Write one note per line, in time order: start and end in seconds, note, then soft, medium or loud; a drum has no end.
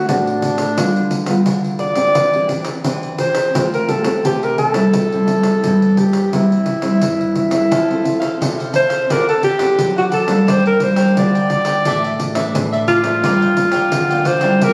0.08 0.74 A2 medium
0.08 0.53 A3 medium
0.08 0.53 C4 medium
0.08 1.43 D4 medium
0.08 0.54 F#4 medium
0.08 pandeiro medium
0.27 pandeiro soft
0.42 pandeiro medium
0.58 pandeiro medium
0.77 1.44 D3 medium
0.77 1.24 G3 medium
0.77 1.24 B3 medium
0.77 1.25 F4 medium
0.77 pandeiro medium
0.96 pandeiro soft
1.11 pandeiro medium
1.26 1.92 G3 medium
1.26 1.93 B3 medium
1.26 1.93 F4 medium
1.26 pandeiro medium
1.46 2.13 D3 medium
1.46 pandeiro medium
1.64 pandeiro soft
1.79 2.81 D5 loud
1.79 pandeiro soft
1.95 2.33 C4 medium
1.95 2.34 D4 medium
1.95 2.34 G4 medium
1.95 pandeiro medium
2.15 2.82 E3 medium
2.15 pandeiro medium
2.34 2.46 C4 medium
2.34 2.46 D4 medium
2.34 2.47 G4 medium
2.34 pandeiro soft
2.49 2.71 C4 medium
2.49 2.71 D4 medium
2.49 2.71 G4 medium
2.49 pandeiro medium
2.65 pandeiro medium
2.84 3.51 E3 medium
2.84 3.50 C4 medium
2.84 3.50 D4 medium
2.84 3.50 G4 medium
2.84 pandeiro medium
3.03 pandeiro soft
3.18 3.69 C5 medium
3.18 pandeiro medium
3.35 pandeiro medium
3.54 4.21 F3 medium
3.54 3.75 A3 medium
3.54 3.76 C4 medium
3.54 3.76 G4 medium
3.54 pandeiro medium
3.74 3.91 A#4 medium
3.74 pandeiro soft
3.88 3.99 A3 medium
3.88 4.00 C4 medium
3.88 4.00 G4 medium
3.88 4.25 A4 medium
3.88 pandeiro medium
4.04 4.70 A3 medium
4.04 4.70 C4 medium
4.04 4.70 G4 medium
4.04 pandeiro medium
4.25 4.91 C3 medium
4.25 4.46 G4 medium
4.25 pandeiro medium
4.43 4.58 A#4 medium
4.43 pandeiro soft
4.58 6.00 A4 medium
4.58 pandeiro medium
4.74 5.05 G3 medium
4.74 5.05 C4 medium
4.74 5.05 E4 medium
4.74 pandeiro medium
4.93 5.60 C3 medium
4.93 pandeiro medium
5.12 5.24 G3 medium
5.12 5.24 C4 medium
5.12 5.24 E4 medium
5.12 pandeiro soft
5.28 5.57 G3 medium
5.28 5.58 C4 medium
5.28 5.58 E4 medium
5.28 pandeiro medium
5.43 pandeiro medium
5.64 6.30 G2 medium
5.64 6.27 G3 medium
5.64 6.28 C4 medium
5.64 6.28 E4 medium
5.64 pandeiro medium
5.82 pandeiro soft
5.97 6.33 G4 medium
5.97 pandeiro medium
6.13 pandeiro medium
6.33 6.99 C3 medium
6.33 6.65 G3 medium
6.33 6.66 C4 soft
6.33 6.66 E4 medium
6.33 7.34 E4 medium
6.33 pandeiro medium
6.52 pandeiro soft
6.66 pandeiro medium
6.82 7.47 G3 medium
6.82 7.47 C4 medium
6.82 7.47 E4 medium
6.82 pandeiro medium
7.01 7.68 G2 medium
7.01 pandeiro medium
7.21 pandeiro soft
7.35 8.44 E4 medium
7.35 pandeiro medium
7.51 7.82 C4 medium
7.51 7.82 E4 medium
7.51 7.82 A4 medium
7.51 pandeiro medium
7.71 8.37 F3 medium
7.71 7.87 E4 medium
7.71 7.87 A4 medium
7.71 7.88 C5 medium
7.71 7.88 F5 medium
7.71 pandeiro medium
7.90 8.01 C4 medium
7.90 8.01 E4 medium
7.90 8.02 A4 medium
7.90 8.03 A4 soft
7.90 8.03 C5 soft
7.90 8.03 F5 soft
7.90 pandeiro soft
8.04 8.34 C4 medium
8.04 8.35 E4 medium
8.04 8.35 A4 medium
8.04 muted cavaquinho stroke soft
8.04 pandeiro medium
8.20 8.55 A4 medium
8.20 8.55 C5 medium
8.20 8.55 F5 medium
8.20 pandeiro medium
8.41 9.06 C3 medium
8.41 9.04 C4 medium
8.41 9.04 E4 medium
8.41 9.05 A4 medium
8.41 pandeiro medium
8.57 8.72 A4 soft
8.57 8.72 C5 soft
8.57 8.73 F5 soft
8.57 pandeiro soft
8.72 8.90 E4 soft
8.72 8.90 A4 soft
8.72 8.89 C5 soft
8.72 9.13 C5 medium
8.72 8.88 F5 medium
8.72 pandeiro medium
8.89 9.08 A4 medium
8.89 9.07 C5 medium
8.89 9.07 F5 medium
8.89 pandeiro medium
9.09 9.42 C4 medium
9.09 9.25 D4 medium
9.09 9.43 D4 soft
9.09 9.43 A4 medium
9.09 9.28 A#4 medium
9.09 9.26 C5 medium
9.09 9.26 D5 medium
9.09 9.26 F#5 medium
9.09 pandeiro medium
9.29 9.44 A4 medium
9.29 9.42 C5 soft
9.29 9.43 D5 soft
9.29 9.43 F#5 soft
9.29 pandeiro soft
9.43 9.93 G4 medium
9.43 muted cavaquinho stroke soft
9.43 pandeiro medium
9.58 10.24 C4 medium
9.58 10.24 D4 medium
9.58 10.24 A4 medium
9.58 9.94 C5 soft
9.58 9.94 D5 medium
9.58 9.93 F#5 medium
9.58 pandeiro medium
9.79 10.28 F#3 medium
9.79 pandeiro medium
9.96 10.05 F#4 medium
9.96 10.10 C5 medium
9.96 10.11 D5 medium
9.96 10.11 F#5 medium
9.96 pandeiro soft
10.11 10.28 D4 soft
10.11 10.52 A4 medium
10.11 10.27 C5 soft
10.11 10.26 D5 medium
10.11 10.25 F#5 medium
10.11 pandeiro medium
10.26 10.59 G3 medium
10.26 10.59 A#3 medium
10.26 10.59 D4 medium
10.26 10.45 C5 soft
10.26 10.45 D5 soft
10.26 10.44 F#5 soft
10.26 pandeiro medium
10.47 11.14 G2 medium
10.47 10.63 D4 medium
10.47 10.64 A#4 medium
10.47 10.66 C5 loud
10.47 10.64 D5 medium
10.47 10.64 G5 medium
10.47 pandeiro medium
10.66 10.85 A#4 medium
10.66 10.80 A#4 soft
10.66 10.80 D5 soft
10.66 10.81 G5 soft
10.66 pandeiro soft
10.80 11.11 G3 medium
10.80 11.11 A#3 medium
10.80 11.12 D4 medium
10.80 11.18 C5 medium
10.80 muted cavaquinho stroke soft
10.80 pandeiro medium
10.96 11.32 A#4 medium
10.96 11.32 D5 medium
10.96 11.32 G5 medium
10.96 pandeiro medium
11.17 11.83 D3 medium
11.17 11.81 G3 medium
11.17 11.81 A#3 medium
11.17 11.81 D4 medium
11.17 12.52 D5 loud
11.17 pandeiro medium
11.35 11.49 A#4 soft
11.35 11.50 D5 soft
11.35 11.50 G5 medium
11.35 pandeiro soft
11.50 11.67 D4 soft
11.50 11.66 A#4 soft
11.50 11.65 D5 soft
11.50 11.64 G5 soft
11.50 pandeiro medium
11.65 11.84 A#4 soft
11.65 11.84 D5 medium
11.65 11.83 G5 medium
11.65 pandeiro medium
11.85 12.52 A2 medium
11.85 12.32 E3 medium
11.85 12.33 A3 medium
11.85 12.02 D4 medium
11.85 12.33 D4 medium
11.85 12.02 A4 medium
11.85 12.03 D5 medium
11.85 12.03 E5 medium
11.85 pandeiro medium
12.04 12.18 A4 soft
12.04 12.19 D5 soft
12.04 12.19 E5 soft
12.04 pandeiro soft
12.19 muted cavaquinho stroke soft
12.19 pandeiro medium
12.35 13.00 E3 medium
12.35 13.00 A3 medium
12.35 13.00 D4 medium
12.35 12.71 A4 medium
12.35 12.70 D5 medium
12.35 12.70 E5 medium
12.35 pandeiro medium
12.55 13.21 A2 medium
12.55 pandeiro medium
12.72 12.89 A4 medium
12.72 12.89 D5 medium
12.72 12.88 E5 medium
12.72 pandeiro soft
12.88 13.05 D4 medium
12.88 14.28 F4 loud
12.88 13.05 A4 medium
12.88 13.04 D5 medium
12.88 13.03 E5 medium
12.88 pandeiro medium
13.03 13.51 F3 medium
13.03 13.52 A#3 medium
13.03 13.52 D4 medium
13.03 13.23 A4 soft
13.03 13.22 D5 soft
13.03 13.22 E5 soft
13.03 pandeiro medium
13.23 13.90 G2 medium
13.23 13.40 F4 medium
13.23 13.40 A#4 medium
13.23 13.40 D5 medium
13.23 13.40 G5 medium
13.23 pandeiro medium
13.41 13.56 A#4 soft
13.41 13.56 D5 soft
13.41 13.56 G5 soft
13.41 pandeiro soft
13.57 14.04 F3 medium
13.57 14.04 A#3 medium
13.57 14.05 D4 medium
13.57 muted cavaquinho stroke soft
13.57 pandeiro medium
13.72 14.08 A#4 medium
13.72 14.08 D5 medium
13.72 14.07 G5 medium
13.72 pandeiro medium
13.92 14.59 D3 medium
13.92 pandeiro medium
14.10 14.40 F3 medium
14.10 14.40 A#3 medium
14.10 14.41 D4 medium
14.10 14.25 A#4 soft
14.10 14.26 D5 soft
14.10 14.26 G5 medium
14.10 pandeiro soft
14.25 14.43 F4 soft
14.25 14.43 A#4 soft
14.25 14.66 C5 medium
14.25 14.42 D5 soft
14.25 14.41 G5 medium
14.25 pandeiro medium
14.41 14.73 G3 medium
14.41 14.73 D4 medium
14.41 14.73 E4 medium
14.41 14.60 A#4 medium
14.41 14.60 D5 medium
14.41 14.60 G5 medium
14.41 pandeiro medium
14.61 14.73 C3 medium
14.61 14.73 D4 medium
14.61 14.73 G4 medium
14.61 14.73 A#4 loud
14.61 14.73 C5 medium
14.61 14.73 E5 medium
14.61 pandeiro medium